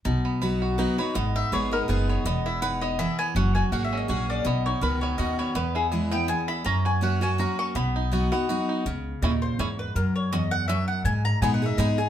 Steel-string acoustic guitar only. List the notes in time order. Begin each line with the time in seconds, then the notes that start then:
0.05 B2
0.42 F#3 B3 D#4 F#4
0.78 F#3 B3 D#4 F#4
0.98 D#4 F#4
1.15 G#2
1.52 G#3 B3 D#4 G#4
1.71 D#4 G#4
1.88 G#3 B3 D#4 G#4
2.26 E2
2.62 D#4
2.99 E3
3.36 F#3
3.72 F#3 A#3 C#4 G#4
4.08 F#3 A#3 C#4 G#4
4.45 B2
4.81 B2 D#3 C#4 F#4
5.18 B2 D#3 C#4 F#4
5.55 E2
5.92 E3 G#3 B3 E4
6.11 B3 E4
6.28 E2
6.65 F#2
7.01 F#3 A#3 C#4 F#4
7.21 C#4 F#4
7.38 F#3 A#3 C#4 F#4
7.75 B2
8.12 F#3 B3 D#4 F#4
8.32 D#4 F#4
8.49 F#3 B3 D#4 F#4
8.86 C#3
9.23 A#2
9.59 G#2
9.96 F#2
10.33 E2
10.69 F#2
11.05 G#2
11.42 G#3 B3 D#4 G#4
11.62 D#4 G#4
11.78 G#3 B3 D#4 G#4
11.98 D#4 G#4